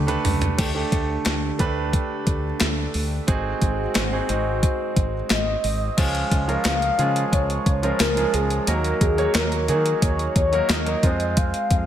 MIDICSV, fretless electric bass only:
0, 0, Header, 1, 2, 480
1, 0, Start_track
1, 0, Tempo, 674157
1, 417, Time_signature, 4, 2, 24, 8
1, 8446, End_track
2, 0, Start_track
2, 0, Title_t, "Fretless electric bass"
2, 0, Program_c, 0, 35
2, 0, Note_on_c, 0, 38, 93
2, 109, Note_off_c, 0, 38, 0
2, 178, Note_on_c, 0, 37, 84
2, 350, Note_off_c, 0, 37, 0
2, 417, Note_on_c, 0, 38, 104
2, 589, Note_off_c, 0, 38, 0
2, 656, Note_on_c, 0, 38, 86
2, 829, Note_off_c, 0, 38, 0
2, 896, Note_on_c, 0, 38, 97
2, 1069, Note_off_c, 0, 38, 0
2, 1136, Note_on_c, 0, 38, 100
2, 1396, Note_off_c, 0, 38, 0
2, 1615, Note_on_c, 0, 38, 93
2, 1788, Note_off_c, 0, 38, 0
2, 1858, Note_on_c, 0, 38, 106
2, 2030, Note_off_c, 0, 38, 0
2, 2097, Note_on_c, 0, 38, 96
2, 2270, Note_off_c, 0, 38, 0
2, 2336, Note_on_c, 0, 32, 105
2, 2509, Note_off_c, 0, 32, 0
2, 2575, Note_on_c, 0, 32, 93
2, 2748, Note_off_c, 0, 32, 0
2, 2816, Note_on_c, 0, 32, 101
2, 2989, Note_off_c, 0, 32, 0
2, 3057, Note_on_c, 0, 32, 96
2, 3316, Note_off_c, 0, 32, 0
2, 3535, Note_on_c, 0, 32, 95
2, 3708, Note_off_c, 0, 32, 0
2, 3776, Note_on_c, 0, 32, 103
2, 3949, Note_off_c, 0, 32, 0
2, 4016, Note_on_c, 0, 32, 94
2, 4189, Note_off_c, 0, 32, 0
2, 4256, Note_on_c, 0, 37, 100
2, 4429, Note_off_c, 0, 37, 0
2, 4495, Note_on_c, 0, 37, 100
2, 4669, Note_off_c, 0, 37, 0
2, 4736, Note_on_c, 0, 37, 101
2, 4909, Note_off_c, 0, 37, 0
2, 4975, Note_on_c, 0, 49, 101
2, 5148, Note_off_c, 0, 49, 0
2, 5216, Note_on_c, 0, 37, 103
2, 5389, Note_off_c, 0, 37, 0
2, 5455, Note_on_c, 0, 37, 99
2, 5628, Note_off_c, 0, 37, 0
2, 5697, Note_on_c, 0, 37, 115
2, 5869, Note_off_c, 0, 37, 0
2, 5937, Note_on_c, 0, 37, 104
2, 6109, Note_off_c, 0, 37, 0
2, 6177, Note_on_c, 0, 39, 103
2, 6349, Note_off_c, 0, 39, 0
2, 6415, Note_on_c, 0, 39, 108
2, 6588, Note_off_c, 0, 39, 0
2, 6655, Note_on_c, 0, 39, 107
2, 6895, Note_on_c, 0, 51, 102
2, 6906, Note_off_c, 0, 39, 0
2, 7068, Note_off_c, 0, 51, 0
2, 7136, Note_on_c, 0, 39, 106
2, 7309, Note_off_c, 0, 39, 0
2, 7375, Note_on_c, 0, 39, 102
2, 7548, Note_off_c, 0, 39, 0
2, 7613, Note_on_c, 0, 39, 109
2, 7787, Note_off_c, 0, 39, 0
2, 7854, Note_on_c, 0, 41, 104
2, 8201, Note_off_c, 0, 41, 0
2, 8335, Note_on_c, 0, 41, 101
2, 8446, Note_off_c, 0, 41, 0
2, 8446, End_track
0, 0, End_of_file